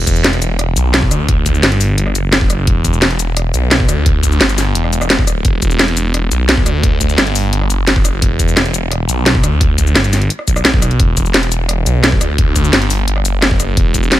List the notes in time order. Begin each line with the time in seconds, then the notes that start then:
Already playing: E1
0.07 kick, closed hi-hat, cabasa
0.16 cabasa
0.24 snare, closed hi-hat
0.33 closed hi-hat
0.42 closed hi-hat, cabasa
0.59 cross-stick, closed hi-hat
0.77 B1, closed hi-hat, cabasa
0.94 snare, closed hi-hat
1.02 kick
1.11 D2, cross-stick, closed hi-hat, cabasa
1.29 kick, closed hi-hat
1.46 kick, closed hi-hat, cabasa
1.55 cabasa
1.63 G1, snare, closed hi-hat
1.72 closed hi-hat
1.81 open hi-hat, cabasa
1.98 G1, closed hi-hat
2.07 cross-stick
2.15 F#1, closed hi-hat, cabasa
2.33 snare, closed hi-hat
2.41 kick
2.50 cross-stick, closed hi-hat, cabasa
2.67 E1, kick, closed hi-hat
2.85 kick, closed hi-hat, cabasa
2.93 cabasa
3.02 snare, closed hi-hat
3.11 closed hi-hat
3.19 closed hi-hat, cabasa
3.37 cross-stick, closed hi-hat
3.54 B1, closed hi-hat, cabasa
3.71 snare, closed hi-hat
3.80 kick
3.89 D2, cross-stick, closed hi-hat, cabasa
4.06 kick, closed hi-hat
4.23 kick, closed hi-hat, cabasa
4.32 cabasa
4.41 G1, snare, closed hi-hat
4.49 closed hi-hat, cabasa
4.58 snare, open hi-hat, cabasa
4.75 E1, closed hi-hat
4.84 cross-stick
4.93 closed hi-hat, cabasa
5.01 cross-stick, cabasa
5.10 snare, closed hi-hat
5.19 kick
5.23 D#1
5.27 cross-stick, closed hi-hat, cabasa
5.45 E1, kick, closed hi-hat
5.62 kick, closed hi-hat, cabasa
5.71 cabasa
5.79 snare, closed hi-hat
5.88 closed hi-hat
5.97 closed hi-hat, cabasa
6.14 cross-stick, closed hi-hat
6.31 B1, closed hi-hat, cabasa
6.49 snare, closed hi-hat
6.57 kick
6.66 D2, cross-stick, closed hi-hat, cabasa
6.83 kick, closed hi-hat
7.01 kick, closed hi-hat, cabasa
7.09 cabasa
7.18 G1, snare, closed hi-hat
7.27 closed hi-hat
7.35 open hi-hat, cabasa
7.53 G1, closed hi-hat
7.61 cross-stick
7.70 F#1, closed hi-hat, cabasa
7.87 snare, closed hi-hat
7.96 kick
8.05 cross-stick, closed hi-hat, cabasa
8.22 E1, kick, closed hi-hat
8.39 kick, closed hi-hat, cabasa
8.48 cabasa
8.57 snare, closed hi-hat
8.66 closed hi-hat
8.74 closed hi-hat, cabasa
8.92 cross-stick, closed hi-hat
9.09 B1, closed hi-hat, cabasa
9.26 snare, closed hi-hat
9.35 kick
9.43 D2, cross-stick, closed hi-hat, cabasa
9.61 kick, closed hi-hat
9.78 kick, closed hi-hat, cabasa
9.87 cabasa
9.96 G1, snare, closed hi-hat
10.04 closed hi-hat, cabasa
10.13 snare, open hi-hat, cabasa
10.22 closed hi-hat
10.30 closed hi-hat
10.39 cross-stick
10.48 B1, kick, closed hi-hat, cabasa
10.56 cross-stick, cabasa
10.65 snare, closed hi-hat
10.74 kick
10.82 cross-stick, closed hi-hat, cabasa
10.91 closed hi-hat
11.00 E1, kick, closed hi-hat
11.17 kick, closed hi-hat, cabasa
11.26 cabasa
11.34 snare, closed hi-hat
11.43 closed hi-hat
11.52 closed hi-hat, cabasa
11.69 cross-stick, closed hi-hat
11.86 B1, closed hi-hat, cabasa
12.04 snare, closed hi-hat
12.12 kick
12.21 D2, cross-stick, closed hi-hat, cabasa
12.38 kick, closed hi-hat
12.56 kick, closed hi-hat, cabasa
12.64 cabasa
12.73 G1, snare, closed hi-hat
12.82 closed hi-hat
12.90 open hi-hat, cabasa
13.08 G1, closed hi-hat
13.16 cross-stick
13.25 F#1, closed hi-hat, cabasa
13.42 snare, closed hi-hat
13.51 kick
13.60 cross-stick, closed hi-hat, cabasa
13.77 E1, kick, closed hi-hat
13.94 kick, closed hi-hat, cabasa
14.03 cabasa
14.12 snare, closed hi-hat